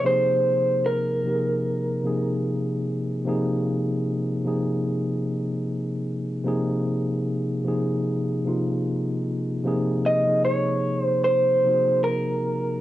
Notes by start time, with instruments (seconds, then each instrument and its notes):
0.03 tine electric piano C3 F3 A#3 D#4, clean electric guitar C5
0.07 tine electric piano G#4
0.86 clean electric guitar A#4
1.24 tine electric piano C3 F3 A#3 D#4
1.28 tine electric piano G4
1.34 tine electric piano G#4
2.03 tine electric piano C3 F3 A#3 D#4
2.07 tine electric piano G#4
3.25 tine electric piano C3 F3 A#3 D#4 G#4
4.44 tine electric piano C3 F3 A#3 D#4 G#4
6.44 tine electric piano C3 F3 A#3 D#4 G#4
7.64 tine electric piano C3 F3 A#3 D#4
7.68 tine electric piano G#4
8.44 tine electric piano C3 F3 A#3 D#4
8.49 tine electric piano F4
9.64 tine electric piano C3 F3 A#3 D#4 G#4
10.06 clean electric guitar D#5
10.25 tine electric piano C3 F3 A#3 D#4
10.29 tine electric piano G#4
10.45 clean electric guitar C#5
11.02 clean electric guitar C5
11.24 clean electric guitar C5
11.64 tine electric piano C3 F3 A#3 D#4
11.68 tine electric piano F#4
11.74 tine electric piano G#4
12.04 clean electric guitar A#4